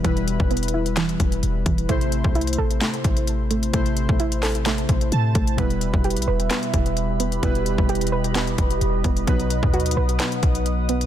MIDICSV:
0, 0, Header, 1, 6, 480
1, 0, Start_track
1, 0, Key_signature, 1, "minor"
1, 0, Tempo, 461538
1, 46, Time_signature, 4, 2, 24, 8
1, 11506, End_track
2, 0, Start_track
2, 0, Title_t, "Ambient pad"
2, 0, Program_c, 0, 92
2, 5807, Note_on_c, 0, 67, 82
2, 5807, Note_on_c, 0, 71, 77
2, 5807, Note_on_c, 0, 76, 76
2, 5807, Note_on_c, 0, 83, 93
2, 7707, Note_off_c, 0, 76, 0
2, 7726, Note_on_c, 0, 75, 75
2, 9608, Note_off_c, 0, 67, 0
2, 9608, Note_off_c, 0, 83, 0
2, 9646, Note_on_c, 0, 78, 78
2, 9647, Note_on_c, 0, 87, 92
2, 11506, Note_off_c, 0, 71, 0
2, 11506, Note_off_c, 0, 75, 0
2, 11506, Note_off_c, 0, 78, 0
2, 11506, Note_off_c, 0, 87, 0
2, 11506, End_track
3, 0, Start_track
3, 0, Title_t, "Synth keys"
3, 0, Program_c, 1, 88
3, 0, Control_c, 1, 64, 127
3, 0, Note_on_c, 1, 47, 82
3, 0, Note_on_c, 1, 55, 76
3, 0, Note_on_c, 1, 64, 74
3, 0, Note_on_c, 1, 71, 96
3, 32, Note_off_c, 1, 47, 0
3, 32, Note_on_c, 1, 47, 80
3, 41, Note_off_c, 1, 55, 0
3, 41, Note_on_c, 1, 55, 76
3, 49, Note_off_c, 1, 64, 0
3, 49, Note_on_c, 1, 64, 72
3, 58, Note_off_c, 1, 71, 0
3, 58, Note_on_c, 1, 71, 94
3, 1920, Note_off_c, 1, 47, 0
3, 1925, Note_off_c, 1, 55, 0
3, 1929, Note_off_c, 1, 64, 0
3, 1933, Note_off_c, 1, 71, 0
3, 1955, Note_on_c, 1, 48, 84
3, 1963, Note_on_c, 1, 57, 74
3, 1972, Note_on_c, 1, 64, 72
3, 1979, Control_c, 1, 64, 0
3, 1981, Note_on_c, 1, 72, 92
3, 2172, Control_c, 1, 64, 127
3, 3842, Note_off_c, 1, 48, 0
3, 3846, Note_off_c, 1, 57, 0
3, 3851, Note_off_c, 1, 64, 0
3, 3855, Note_off_c, 1, 72, 0
3, 3878, Note_on_c, 1, 48, 84
3, 3887, Note_on_c, 1, 57, 75
3, 3894, Note_on_c, 1, 64, 70
3, 3903, Note_on_c, 1, 72, 95
3, 5334, Note_on_c, 1, 81, 78
3, 5763, Note_off_c, 1, 48, 0
3, 5768, Note_off_c, 1, 57, 0
3, 5772, Note_off_c, 1, 64, 0
3, 5776, Note_off_c, 1, 72, 0
3, 5776, Note_off_c, 1, 81, 0
3, 5786, Note_on_c, 1, 47, 77
3, 5794, Note_on_c, 1, 55, 72
3, 5802, Note_on_c, 1, 64, 72
3, 5811, Note_on_c, 1, 71, 87
3, 5819, Control_c, 1, 64, 0
3, 5975, Control_c, 1, 64, 127
3, 7677, Note_off_c, 1, 47, 0
3, 7682, Note_off_c, 1, 55, 0
3, 7686, Note_off_c, 1, 64, 0
3, 7690, Note_off_c, 1, 71, 0
3, 7720, Note_on_c, 1, 47, 84
3, 7728, Note_on_c, 1, 55, 74
3, 7737, Note_on_c, 1, 64, 75
3, 7745, Note_on_c, 1, 71, 91
3, 9605, Note_off_c, 1, 47, 0
3, 9609, Note_off_c, 1, 55, 0
3, 9613, Note_off_c, 1, 64, 0
3, 9618, Note_off_c, 1, 71, 0
3, 9636, Note_on_c, 1, 47, 80
3, 9644, Note_on_c, 1, 54, 73
3, 9653, Note_on_c, 1, 63, 75
3, 9658, Control_c, 1, 64, 0
3, 9661, Note_on_c, 1, 71, 90
3, 9843, Control_c, 1, 64, 127
3, 11506, Note_off_c, 1, 47, 0
3, 11506, Note_off_c, 1, 54, 0
3, 11506, Note_off_c, 1, 63, 0
3, 11506, Note_off_c, 1, 71, 0
3, 11506, End_track
4, 0, Start_track
4, 0, Title_t, "Synth pluck"
4, 0, Program_c, 2, 84
4, 0, Note_on_c, 2, 64, 90
4, 47, Note_on_c, 2, 52, 95
4, 286, Note_off_c, 2, 64, 0
4, 528, Note_on_c, 2, 59, 92
4, 768, Note_on_c, 2, 64, 75
4, 994, Note_off_c, 2, 52, 0
4, 1007, Note_on_c, 2, 52, 98
4, 1713, Note_off_c, 2, 52, 0
4, 1726, Note_on_c, 2, 52, 78
4, 1966, Note_off_c, 2, 52, 0
4, 1967, Note_off_c, 2, 59, 0
4, 1967, Note_off_c, 2, 64, 0
4, 1968, Note_on_c, 2, 57, 98
4, 2447, Note_on_c, 2, 64, 92
4, 2686, Note_on_c, 2, 69, 89
4, 2914, Note_off_c, 2, 57, 0
4, 2926, Note_on_c, 2, 57, 82
4, 3634, Note_off_c, 2, 57, 0
4, 3646, Note_on_c, 2, 57, 78
4, 3874, Note_off_c, 2, 57, 0
4, 3886, Note_off_c, 2, 64, 0
4, 3886, Note_on_c, 2, 57, 97
4, 4126, Note_off_c, 2, 69, 0
4, 4366, Note_on_c, 2, 64, 100
4, 4606, Note_on_c, 2, 69, 86
4, 4833, Note_off_c, 2, 57, 0
4, 4846, Note_on_c, 2, 57, 93
4, 5553, Note_off_c, 2, 57, 0
4, 5565, Note_on_c, 2, 57, 77
4, 5805, Note_on_c, 2, 59, 90
4, 5806, Note_off_c, 2, 57, 0
4, 5806, Note_off_c, 2, 64, 0
4, 5806, Note_off_c, 2, 69, 0
4, 6286, Note_on_c, 2, 67, 89
4, 6526, Note_on_c, 2, 71, 80
4, 6755, Note_off_c, 2, 59, 0
4, 6767, Note_on_c, 2, 59, 98
4, 7475, Note_off_c, 2, 59, 0
4, 7487, Note_on_c, 2, 59, 72
4, 7715, Note_off_c, 2, 59, 0
4, 7726, Note_off_c, 2, 67, 0
4, 7727, Note_on_c, 2, 59, 100
4, 7966, Note_off_c, 2, 71, 0
4, 8207, Note_on_c, 2, 67, 88
4, 8446, Note_on_c, 2, 71, 85
4, 8674, Note_off_c, 2, 59, 0
4, 8686, Note_on_c, 2, 59, 98
4, 9396, Note_off_c, 2, 59, 0
4, 9408, Note_on_c, 2, 59, 76
4, 9635, Note_off_c, 2, 59, 0
4, 9646, Note_off_c, 2, 71, 0
4, 9647, Note_off_c, 2, 67, 0
4, 9647, Note_on_c, 2, 59, 96
4, 10125, Note_on_c, 2, 66, 94
4, 10367, Note_on_c, 2, 71, 87
4, 10594, Note_off_c, 2, 59, 0
4, 10607, Note_on_c, 2, 59, 88
4, 11315, Note_off_c, 2, 59, 0
4, 11327, Note_on_c, 2, 59, 78
4, 11506, Note_off_c, 2, 59, 0
4, 11506, Note_off_c, 2, 66, 0
4, 11506, Note_off_c, 2, 71, 0
4, 11506, End_track
5, 0, Start_track
5, 0, Title_t, "808-style bass"
5, 0, Program_c, 3, 38
5, 47, Note_on_c, 3, 28, 113
5, 399, Note_off_c, 3, 28, 0
5, 414, Note_on_c, 3, 28, 105
5, 1213, Note_off_c, 3, 28, 0
5, 1247, Note_on_c, 3, 28, 110
5, 1477, Note_off_c, 3, 28, 0
5, 1487, Note_on_c, 3, 28, 108
5, 1717, Note_off_c, 3, 28, 0
5, 1726, Note_on_c, 3, 28, 107
5, 1956, Note_off_c, 3, 28, 0
5, 1966, Note_on_c, 3, 33, 110
5, 2318, Note_off_c, 3, 33, 0
5, 2334, Note_on_c, 3, 36, 104
5, 2672, Note_off_c, 3, 36, 0
5, 2686, Note_on_c, 3, 33, 105
5, 2917, Note_off_c, 3, 33, 0
5, 3167, Note_on_c, 3, 33, 107
5, 3857, Note_off_c, 3, 33, 0
5, 3886, Note_on_c, 3, 33, 112
5, 4238, Note_off_c, 3, 33, 0
5, 4253, Note_on_c, 3, 33, 107
5, 5053, Note_off_c, 3, 33, 0
5, 5085, Note_on_c, 3, 33, 112
5, 5316, Note_off_c, 3, 33, 0
5, 5326, Note_on_c, 3, 45, 114
5, 5556, Note_off_c, 3, 45, 0
5, 5565, Note_on_c, 3, 33, 109
5, 5796, Note_off_c, 3, 33, 0
5, 5805, Note_on_c, 3, 28, 116
5, 6158, Note_off_c, 3, 28, 0
5, 6173, Note_on_c, 3, 28, 113
5, 6412, Note_on_c, 3, 35, 96
5, 6428, Note_off_c, 3, 28, 0
5, 6520, Note_off_c, 3, 35, 0
5, 6525, Note_on_c, 3, 28, 105
5, 6756, Note_off_c, 3, 28, 0
5, 7006, Note_on_c, 3, 28, 108
5, 7697, Note_off_c, 3, 28, 0
5, 7726, Note_on_c, 3, 28, 113
5, 8079, Note_off_c, 3, 28, 0
5, 8094, Note_on_c, 3, 28, 106
5, 8893, Note_off_c, 3, 28, 0
5, 8926, Note_on_c, 3, 28, 109
5, 9157, Note_off_c, 3, 28, 0
5, 9166, Note_on_c, 3, 28, 113
5, 9397, Note_off_c, 3, 28, 0
5, 9406, Note_on_c, 3, 28, 112
5, 9636, Note_off_c, 3, 28, 0
5, 9645, Note_on_c, 3, 35, 113
5, 9998, Note_off_c, 3, 35, 0
5, 10013, Note_on_c, 3, 39, 107
5, 10352, Note_off_c, 3, 39, 0
5, 10364, Note_on_c, 3, 35, 108
5, 10595, Note_off_c, 3, 35, 0
5, 10845, Note_on_c, 3, 35, 107
5, 11506, Note_off_c, 3, 35, 0
5, 11506, End_track
6, 0, Start_track
6, 0, Title_t, "Drums"
6, 47, Note_on_c, 9, 36, 122
6, 47, Note_on_c, 9, 42, 81
6, 151, Note_off_c, 9, 36, 0
6, 151, Note_off_c, 9, 42, 0
6, 174, Note_on_c, 9, 42, 59
6, 278, Note_off_c, 9, 42, 0
6, 287, Note_on_c, 9, 42, 90
6, 391, Note_off_c, 9, 42, 0
6, 414, Note_on_c, 9, 36, 105
6, 518, Note_off_c, 9, 36, 0
6, 527, Note_on_c, 9, 42, 47
6, 590, Note_off_c, 9, 42, 0
6, 590, Note_on_c, 9, 42, 55
6, 653, Note_off_c, 9, 42, 0
6, 653, Note_on_c, 9, 42, 67
6, 710, Note_off_c, 9, 42, 0
6, 710, Note_on_c, 9, 42, 81
6, 814, Note_off_c, 9, 42, 0
6, 893, Note_on_c, 9, 42, 56
6, 997, Note_off_c, 9, 42, 0
6, 1005, Note_on_c, 9, 42, 86
6, 1006, Note_on_c, 9, 38, 112
6, 1010, Note_on_c, 9, 39, 88
6, 1109, Note_off_c, 9, 42, 0
6, 1110, Note_off_c, 9, 38, 0
6, 1114, Note_off_c, 9, 39, 0
6, 1134, Note_on_c, 9, 42, 57
6, 1238, Note_off_c, 9, 42, 0
6, 1246, Note_on_c, 9, 42, 72
6, 1247, Note_on_c, 9, 36, 100
6, 1350, Note_off_c, 9, 42, 0
6, 1351, Note_off_c, 9, 36, 0
6, 1374, Note_on_c, 9, 42, 62
6, 1478, Note_off_c, 9, 42, 0
6, 1486, Note_on_c, 9, 42, 68
6, 1590, Note_off_c, 9, 42, 0
6, 1726, Note_on_c, 9, 36, 108
6, 1726, Note_on_c, 9, 42, 74
6, 1830, Note_off_c, 9, 36, 0
6, 1830, Note_off_c, 9, 42, 0
6, 1853, Note_on_c, 9, 42, 56
6, 1957, Note_off_c, 9, 42, 0
6, 1966, Note_on_c, 9, 36, 118
6, 1966, Note_on_c, 9, 42, 78
6, 2070, Note_off_c, 9, 36, 0
6, 2070, Note_off_c, 9, 42, 0
6, 2093, Note_on_c, 9, 42, 60
6, 2197, Note_off_c, 9, 42, 0
6, 2206, Note_on_c, 9, 42, 94
6, 2310, Note_off_c, 9, 42, 0
6, 2334, Note_on_c, 9, 36, 105
6, 2438, Note_off_c, 9, 36, 0
6, 2446, Note_on_c, 9, 42, 45
6, 2510, Note_off_c, 9, 42, 0
6, 2510, Note_on_c, 9, 42, 55
6, 2573, Note_off_c, 9, 42, 0
6, 2573, Note_on_c, 9, 42, 70
6, 2630, Note_off_c, 9, 42, 0
6, 2630, Note_on_c, 9, 42, 81
6, 2734, Note_off_c, 9, 42, 0
6, 2814, Note_on_c, 9, 42, 55
6, 2918, Note_off_c, 9, 42, 0
6, 2926, Note_on_c, 9, 38, 112
6, 2926, Note_on_c, 9, 42, 87
6, 2931, Note_on_c, 9, 39, 90
6, 3030, Note_off_c, 9, 38, 0
6, 3030, Note_off_c, 9, 42, 0
6, 3035, Note_off_c, 9, 39, 0
6, 3053, Note_on_c, 9, 42, 57
6, 3157, Note_off_c, 9, 42, 0
6, 3166, Note_on_c, 9, 36, 96
6, 3166, Note_on_c, 9, 42, 72
6, 3270, Note_off_c, 9, 36, 0
6, 3270, Note_off_c, 9, 42, 0
6, 3293, Note_on_c, 9, 42, 60
6, 3397, Note_off_c, 9, 42, 0
6, 3405, Note_on_c, 9, 42, 72
6, 3509, Note_off_c, 9, 42, 0
6, 3647, Note_on_c, 9, 42, 77
6, 3751, Note_off_c, 9, 42, 0
6, 3773, Note_on_c, 9, 42, 54
6, 3877, Note_off_c, 9, 42, 0
6, 3884, Note_on_c, 9, 42, 81
6, 3885, Note_on_c, 9, 36, 120
6, 3988, Note_off_c, 9, 42, 0
6, 3989, Note_off_c, 9, 36, 0
6, 4012, Note_on_c, 9, 42, 58
6, 4116, Note_off_c, 9, 42, 0
6, 4125, Note_on_c, 9, 42, 94
6, 4229, Note_off_c, 9, 42, 0
6, 4253, Note_on_c, 9, 36, 105
6, 4357, Note_off_c, 9, 36, 0
6, 4364, Note_on_c, 9, 42, 75
6, 4468, Note_off_c, 9, 42, 0
6, 4491, Note_on_c, 9, 42, 90
6, 4595, Note_off_c, 9, 42, 0
6, 4604, Note_on_c, 9, 38, 86
6, 4605, Note_on_c, 9, 46, 85
6, 4609, Note_on_c, 9, 39, 73
6, 4708, Note_off_c, 9, 38, 0
6, 4709, Note_off_c, 9, 46, 0
6, 4713, Note_off_c, 9, 39, 0
6, 4731, Note_on_c, 9, 42, 57
6, 4835, Note_off_c, 9, 42, 0
6, 4844, Note_on_c, 9, 38, 111
6, 4844, Note_on_c, 9, 42, 86
6, 4849, Note_on_c, 9, 39, 86
6, 4948, Note_off_c, 9, 38, 0
6, 4948, Note_off_c, 9, 42, 0
6, 4953, Note_off_c, 9, 39, 0
6, 4972, Note_on_c, 9, 42, 54
6, 5076, Note_off_c, 9, 42, 0
6, 5085, Note_on_c, 9, 42, 69
6, 5086, Note_on_c, 9, 36, 96
6, 5189, Note_off_c, 9, 42, 0
6, 5190, Note_off_c, 9, 36, 0
6, 5213, Note_on_c, 9, 42, 60
6, 5317, Note_off_c, 9, 42, 0
6, 5324, Note_on_c, 9, 42, 67
6, 5428, Note_off_c, 9, 42, 0
6, 5565, Note_on_c, 9, 36, 104
6, 5565, Note_on_c, 9, 42, 75
6, 5669, Note_off_c, 9, 36, 0
6, 5669, Note_off_c, 9, 42, 0
6, 5693, Note_on_c, 9, 42, 56
6, 5797, Note_off_c, 9, 42, 0
6, 5805, Note_on_c, 9, 36, 125
6, 5805, Note_on_c, 9, 42, 81
6, 5909, Note_off_c, 9, 36, 0
6, 5909, Note_off_c, 9, 42, 0
6, 5932, Note_on_c, 9, 42, 56
6, 6036, Note_off_c, 9, 42, 0
6, 6045, Note_on_c, 9, 42, 93
6, 6149, Note_off_c, 9, 42, 0
6, 6173, Note_on_c, 9, 36, 102
6, 6277, Note_off_c, 9, 36, 0
6, 6284, Note_on_c, 9, 42, 45
6, 6348, Note_off_c, 9, 42, 0
6, 6348, Note_on_c, 9, 42, 56
6, 6412, Note_off_c, 9, 42, 0
6, 6412, Note_on_c, 9, 42, 70
6, 6469, Note_off_c, 9, 42, 0
6, 6469, Note_on_c, 9, 42, 79
6, 6573, Note_off_c, 9, 42, 0
6, 6652, Note_on_c, 9, 42, 57
6, 6756, Note_off_c, 9, 42, 0
6, 6765, Note_on_c, 9, 38, 108
6, 6765, Note_on_c, 9, 42, 85
6, 6770, Note_on_c, 9, 39, 89
6, 6869, Note_off_c, 9, 38, 0
6, 6869, Note_off_c, 9, 42, 0
6, 6874, Note_off_c, 9, 39, 0
6, 6892, Note_on_c, 9, 42, 57
6, 6996, Note_off_c, 9, 42, 0
6, 7005, Note_on_c, 9, 42, 70
6, 7006, Note_on_c, 9, 36, 98
6, 7109, Note_off_c, 9, 42, 0
6, 7110, Note_off_c, 9, 36, 0
6, 7133, Note_on_c, 9, 42, 59
6, 7237, Note_off_c, 9, 42, 0
6, 7246, Note_on_c, 9, 42, 71
6, 7350, Note_off_c, 9, 42, 0
6, 7487, Note_on_c, 9, 42, 78
6, 7591, Note_off_c, 9, 42, 0
6, 7614, Note_on_c, 9, 42, 53
6, 7718, Note_off_c, 9, 42, 0
6, 7726, Note_on_c, 9, 36, 123
6, 7726, Note_on_c, 9, 42, 81
6, 7830, Note_off_c, 9, 36, 0
6, 7830, Note_off_c, 9, 42, 0
6, 7854, Note_on_c, 9, 42, 59
6, 7958, Note_off_c, 9, 42, 0
6, 7967, Note_on_c, 9, 42, 92
6, 8071, Note_off_c, 9, 42, 0
6, 8094, Note_on_c, 9, 36, 103
6, 8198, Note_off_c, 9, 36, 0
6, 8206, Note_on_c, 9, 42, 47
6, 8270, Note_off_c, 9, 42, 0
6, 8270, Note_on_c, 9, 42, 56
6, 8334, Note_off_c, 9, 42, 0
6, 8334, Note_on_c, 9, 42, 70
6, 8390, Note_off_c, 9, 42, 0
6, 8390, Note_on_c, 9, 42, 80
6, 8494, Note_off_c, 9, 42, 0
6, 8573, Note_on_c, 9, 42, 56
6, 8677, Note_off_c, 9, 42, 0
6, 8687, Note_on_c, 9, 38, 112
6, 8687, Note_on_c, 9, 42, 85
6, 8692, Note_on_c, 9, 39, 88
6, 8791, Note_off_c, 9, 38, 0
6, 8791, Note_off_c, 9, 42, 0
6, 8796, Note_off_c, 9, 39, 0
6, 8813, Note_on_c, 9, 42, 55
6, 8917, Note_off_c, 9, 42, 0
6, 8926, Note_on_c, 9, 36, 102
6, 8926, Note_on_c, 9, 42, 74
6, 9030, Note_off_c, 9, 36, 0
6, 9030, Note_off_c, 9, 42, 0
6, 9053, Note_on_c, 9, 42, 62
6, 9157, Note_off_c, 9, 42, 0
6, 9166, Note_on_c, 9, 42, 68
6, 9270, Note_off_c, 9, 42, 0
6, 9405, Note_on_c, 9, 36, 106
6, 9405, Note_on_c, 9, 42, 76
6, 9509, Note_off_c, 9, 36, 0
6, 9509, Note_off_c, 9, 42, 0
6, 9532, Note_on_c, 9, 42, 55
6, 9636, Note_off_c, 9, 42, 0
6, 9645, Note_on_c, 9, 36, 119
6, 9645, Note_on_c, 9, 42, 79
6, 9749, Note_off_c, 9, 36, 0
6, 9749, Note_off_c, 9, 42, 0
6, 9772, Note_on_c, 9, 42, 59
6, 9876, Note_off_c, 9, 42, 0
6, 9884, Note_on_c, 9, 42, 98
6, 9988, Note_off_c, 9, 42, 0
6, 10013, Note_on_c, 9, 36, 106
6, 10117, Note_off_c, 9, 36, 0
6, 10125, Note_on_c, 9, 42, 48
6, 10189, Note_off_c, 9, 42, 0
6, 10189, Note_on_c, 9, 42, 56
6, 10252, Note_off_c, 9, 42, 0
6, 10252, Note_on_c, 9, 42, 67
6, 10309, Note_off_c, 9, 42, 0
6, 10309, Note_on_c, 9, 42, 81
6, 10413, Note_off_c, 9, 42, 0
6, 10493, Note_on_c, 9, 42, 54
6, 10597, Note_off_c, 9, 42, 0
6, 10605, Note_on_c, 9, 38, 108
6, 10605, Note_on_c, 9, 42, 84
6, 10610, Note_on_c, 9, 39, 88
6, 10709, Note_off_c, 9, 38, 0
6, 10709, Note_off_c, 9, 42, 0
6, 10714, Note_off_c, 9, 39, 0
6, 10732, Note_on_c, 9, 42, 55
6, 10836, Note_off_c, 9, 42, 0
6, 10844, Note_on_c, 9, 42, 74
6, 10845, Note_on_c, 9, 36, 97
6, 10948, Note_off_c, 9, 42, 0
6, 10949, Note_off_c, 9, 36, 0
6, 10971, Note_on_c, 9, 42, 59
6, 11075, Note_off_c, 9, 42, 0
6, 11084, Note_on_c, 9, 42, 69
6, 11188, Note_off_c, 9, 42, 0
6, 11325, Note_on_c, 9, 42, 78
6, 11429, Note_off_c, 9, 42, 0
6, 11452, Note_on_c, 9, 42, 54
6, 11506, Note_off_c, 9, 42, 0
6, 11506, End_track
0, 0, End_of_file